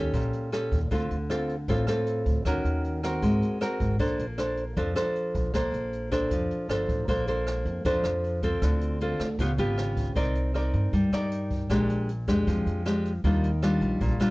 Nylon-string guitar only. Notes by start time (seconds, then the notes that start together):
Already playing: D#3 C#4 G4 A4
0.14 A#2
0.52 C#4 G4 A4
0.91 D3 C4 F4 A4
1.30 C4 F4 A4
1.69 A2 C4 F4 A4
1.88 C4 F4 A4
2.46 D#3 C#4 F#4 A#4
3.04 C4 F#4 A#4
3.22 G#3
3.61 C4 F#4 A#4
3.99 A#3 D4 A4 C5
4.38 D4 A4 C5
4.77 F3 D4 A4 C5
4.96 D4 A4 C5
5.54 A#3 D4 A4 C5
6.12 D4 A4 C5
6.31 F3
6.70 D4 A4 C5
7.08 A#3 D4 A4 C5
7.28 D4 A4 C5
7.85 F3 D4 A4 C5
8.43 C4 F4 A4
8.63 D3
9.01 C4 F4 A4
9.40 C#3 B3 F4 G4
9.58 B3 F4 G4
10.16 C4 D#4 A#4 D5
10.55 D#4 A#4 D5
10.93 G3
11.13 D#4 A#4 D5
11.70 A#2 G#3 D4 G4
12.28 G#3 D4 G4
12.47 F3
12.86 G#3 D4 G4
13.24 D#3 G3 D4 F4
13.62 G3 D4 F4
14.01 A#2
14.20 G3 D4 F4